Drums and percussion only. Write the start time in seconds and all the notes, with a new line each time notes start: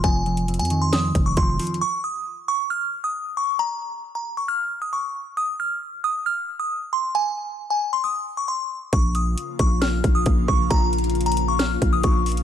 0.04 kick, closed hi-hat
0.26 closed hi-hat
0.37 closed hi-hat
0.48 closed hi-hat
0.54 closed hi-hat
0.59 closed hi-hat
0.65 closed hi-hat
0.70 closed hi-hat
0.93 snare, closed hi-hat
1.15 kick, closed hi-hat
1.37 kick, closed hi-hat
1.59 closed hi-hat, open hi-hat
1.67 closed hi-hat
1.74 closed hi-hat
8.93 kick, closed hi-hat
9.15 closed hi-hat
9.38 closed hi-hat
9.59 kick, closed hi-hat
9.82 snare, closed hi-hat
10.04 kick, closed hi-hat
10.26 kick, closed hi-hat
10.48 kick
10.71 kick, closed hi-hat
10.93 closed hi-hat
10.98 closed hi-hat
11.04 closed hi-hat
11.10 closed hi-hat
11.15 closed hi-hat
11.21 closed hi-hat
11.26 closed hi-hat
11.32 closed hi-hat
11.37 closed hi-hat
11.59 snare, closed hi-hat
11.82 kick, closed hi-hat
12.03 kick, closed hi-hat
12.26 closed hi-hat, open hi-hat
12.32 closed hi-hat
12.37 closed hi-hat